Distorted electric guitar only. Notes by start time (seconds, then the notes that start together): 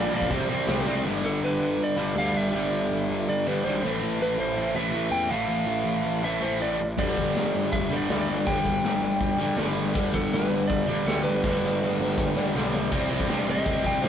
Already playing: F3 A#3
0.11 A#2 F3 A#3
0.29 C3 G3 C4
0.49 C3 G3 C4
0.67 C3 G3 C4
0.86 C3 G3 C4
1.03 G2 D3
1.08 G3
1.96 G2 D3 G3
2.15 G2 D3 G3
2.52 G2 D3 G3
3.45 G2 D3 G3
3.64 G2 D3 G3
3.81 A2 E3 A3
4.75 A2 E3 A3
4.92 A2 E3 A3
5.28 A2 E3 A3
6.24 A2 E3 A3
6.41 E3 A3
6.45 A2
6.98 G2 D3
7.02 G3
7.90 D3 G3
7.94 G2
8.09 G2 D3 G3
8.46 G2 D3 G3
9.38 G2 D3 G3
9.57 G2 D3 G3
9.93 G2 D3 G3
10.87 D3 G3
10.91 G2
11.06 G2 D3 G3
11.44 G2 D3 G3
12.36 G2 D3 G3
12.53 G2 D3 G3
12.92 C3 G3 C4
13.10 C3 G3 C4
13.28 C3 G3 C4
13.48 C3 G3 C4
13.67 C3 G3 C4
13.83 C3 G3 C4
14.02 C3 G3 C4